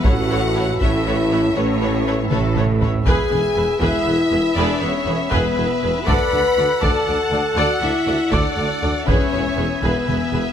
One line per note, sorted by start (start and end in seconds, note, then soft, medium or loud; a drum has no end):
0.00 0.71 A1 medium
0.00 0.71 A2 medium
0.00 0.11 A4 medium
0.00 3.06 B4 medium
0.00 0.11 B4 medium
0.00 3.05 E5 medium
0.04 0.71 A1 medium
0.04 3.06 C#4 medium
0.04 0.80 F#4 loud
0.04 3.06 A4 medium
0.04 0.12 C#5 medium
0.04 0.80 F#5 medium
0.04 taiko medium
0.30 0.38 A4 medium
0.30 0.38 B4 medium
0.30 0.39 C#5 medium
0.55 0.63 A4 soft
0.55 0.64 B4 medium
0.55 0.63 C#5 soft
0.79 1.46 A1 medium
0.79 1.47 A1 medium
0.79 1.46 A2 medium
0.79 1.56 E4 medium
0.79 0.89 A4 soft
0.79 0.89 B4 soft
0.79 0.90 C#5 medium
0.79 1.54 E5 medium
0.79 taiko medium
1.07 1.15 A4 medium
1.07 1.15 B4 soft
1.07 1.15 C#5 medium
1.31 1.40 A4 medium
1.31 1.40 B4 medium
1.31 1.39 C#5 medium
1.55 2.22 A1 medium
1.55 2.21 A2 medium
1.55 2.31 C#4 medium
1.55 1.64 A4 medium
1.55 1.64 B4 medium
1.55 1.64 C#5 medium
1.55 2.31 C#5 medium
1.82 1.90 A4 medium
1.82 1.90 B4 medium
1.82 1.91 C#5 medium
2.06 2.14 A4 medium
2.06 2.14 B4 medium
2.06 2.15 C#5 medium
2.30 2.97 A1 medium
2.30 2.97 A2 medium
2.30 2.55 A3 medium
2.30 2.55 A4 medium
2.30 2.39 A4 medium
2.30 2.39 B4 medium
2.30 2.41 C#5 medium
2.30 taiko mid medium
2.55 2.63 A4 soft
2.55 2.64 B4 soft
2.55 2.65 C#5 medium
2.55 taiko mid medium
2.81 2.89 A4 medium
2.81 2.89 B4 medium
2.81 2.91 C#5 medium
2.81 taiko low medium
3.04 3.14 E1 medium
3.04 3.16 E1 medium
3.04 3.13 E2 medium
3.04 6.08 B3 medium
3.04 3.76 G#4 loud
3.04 6.08 G#4 medium
3.04 3.29 G#4 medium
3.04 3.29 B4 medium
3.04 6.04 B4 medium
3.04 6.04 E5 medium
3.04 3.77 G#5 medium
3.04 taiko medium
3.09 6.05 E5 medium
3.30 3.40 E1 medium
3.30 3.42 E1 medium
3.30 3.38 E2 medium
3.30 3.39 G#4 medium
3.30 3.39 B4 medium
3.55 3.66 E1 soft
3.55 3.65 E1 medium
3.55 3.63 E2 soft
3.55 3.64 G#4 medium
3.55 3.65 B4 soft
3.80 3.91 E1 medium
3.80 3.88 E2 medium
3.80 4.55 E4 loud
3.80 4.04 G#4 medium
3.80 4.04 B4 medium
3.80 4.54 E5 medium
3.80 taiko medium
4.05 4.15 E1 soft
4.05 4.17 E1 medium
4.05 4.13 E2 medium
4.05 4.15 G#4 medium
4.05 4.15 B4 medium
4.30 4.41 E1 medium
4.30 4.38 E2 medium
4.30 4.39 G#4 medium
4.30 4.39 B4 medium
4.55 4.67 E1 medium
4.55 4.66 E1 medium
4.55 4.64 E2 medium
4.55 4.81 D4 medium
4.55 4.80 G#4 medium
4.55 4.80 B4 medium
4.55 4.81 D5 medium
4.79 4.91 E1 medium
4.79 4.89 E2 medium
4.79 5.30 C#4 medium
4.79 4.90 G#4 medium
4.79 4.90 B4 medium
4.79 5.32 C#5 medium
4.83 4.91 E1 soft
5.06 5.17 E1 medium
5.06 5.16 E1 medium
5.06 5.14 E2 soft
5.06 5.14 G#4 medium
5.06 5.14 B4 medium
5.30 5.42 E1 medium
5.30 5.41 E1 medium
5.30 5.39 E2 medium
5.30 6.06 B3 medium
5.30 5.55 G#4 medium
5.30 5.54 B4 medium
5.30 6.06 B4 medium
5.30 taiko medium
5.56 5.67 E1 medium
5.56 5.66 E1 medium
5.56 5.66 E2 medium
5.56 5.65 G#4 medium
5.56 5.65 B4 medium
5.82 5.93 E1 medium
5.82 5.91 E1 soft
5.82 5.90 E2 medium
5.82 5.90 G#4 soft
5.82 5.90 B4 medium
6.05 6.15 D2 medium
6.05 6.18 D2 medium
6.05 6.16 D2 medium
6.05 9.08 D4 medium
6.05 9.08 F#4 medium
6.05 6.30 A4 medium
6.05 9.08 A4 medium
6.05 6.82 B4 loud
6.05 6.30 D5 medium
6.05 9.04 F#5 medium
6.05 9.08 F#5 medium
6.05 6.83 B5 medium
6.05 taiko medium
6.32 6.42 D2 soft
6.32 6.41 D2 medium
6.32 6.41 A4 medium
6.32 6.41 D5 soft
6.57 6.65 D2 medium
6.57 6.67 D2 medium
6.57 6.66 D2 medium
6.57 6.66 A4 soft
6.57 6.66 D5 medium
6.82 6.92 D2 medium
6.82 6.90 D2 medium
6.82 7.06 A4 medium
6.82 7.58 A4 medium
6.82 7.06 D5 medium
6.82 7.57 A5 medium
6.82 taiko medium
7.07 7.17 D2 soft
7.07 7.15 D2 medium
7.07 7.16 D2 soft
7.07 7.16 A4 medium
7.07 7.16 D5 medium
7.32 7.40 D2 medium
7.32 7.43 D2 medium
7.32 7.40 A4 medium
7.32 7.41 D5 medium
7.56 7.64 D2 medium
7.56 7.67 D2 medium
7.56 7.65 D2 medium
7.56 7.83 F#4 medium
7.56 7.81 A4 medium
7.56 7.81 D5 medium
7.56 7.82 F#5 medium
7.81 7.89 D2 medium
7.81 7.92 D2 soft
7.81 7.90 D2 soft
7.81 8.32 E4 medium
7.81 7.90 A4 medium
7.81 7.90 D5 medium
7.81 8.33 E5 medium
8.07 8.15 D2 soft
8.07 8.17 D2 medium
8.07 8.15 D2 medium
8.07 8.15 A4 medium
8.07 8.15 D5 medium
8.31 8.40 D2 medium
8.31 8.41 D2 medium
8.31 8.43 D2 medium
8.31 9.08 D4 medium
8.31 8.55 A4 medium
8.31 8.56 D5 medium
8.31 9.08 D5 medium
8.31 taiko medium
8.56 8.64 D2 soft
8.56 8.68 D2 medium
8.56 8.66 D2 medium
8.56 8.65 A4 soft
8.56 8.65 D5 medium
8.81 8.91 D2 medium
8.81 8.91 D2 soft
8.81 8.93 D2 soft
8.81 8.89 A4 medium
8.81 8.90 D5 medium
9.05 9.18 E1 medium
9.05 9.16 E1 medium
9.05 9.15 E2 medium
9.05 10.53 B3 medium
9.05 9.80 C#4 medium
9.05 10.53 E4 medium
9.05 9.30 G#4 medium
9.05 10.53 G#4 medium
9.05 9.31 B4 medium
9.05 9.82 C#5 medium
9.05 10.53 E5 medium
9.05 10.53 G#5 medium
9.05 taiko medium
9.32 9.41 E1 medium
9.32 9.44 E1 medium
9.32 9.40 E2 soft
9.32 9.40 G#4 soft
9.32 9.40 B4 medium
9.57 9.67 E1 soft
9.57 9.66 E1 medium
9.57 9.66 E2 medium
9.57 9.65 G#4 soft
9.57 9.65 B4 soft
9.82 9.93 E1 medium
9.82 9.91 E1 medium
9.82 9.90 E2 medium
9.82 10.53 B3 medium
9.82 10.06 G#4 medium
9.82 10.07 B4 medium
9.82 10.53 B4 medium
9.82 taiko medium
10.08 10.16 E1 soft
10.08 10.19 E1 soft
10.08 10.16 E2 soft
10.08 10.17 G#4 soft
10.08 10.16 B4 soft
10.08 taiko mid medium
10.33 10.41 E1 soft
10.33 10.44 E1 medium
10.33 10.41 E2 soft
10.33 10.41 G#4 medium
10.33 10.41 B4 soft
10.33 taiko mid soft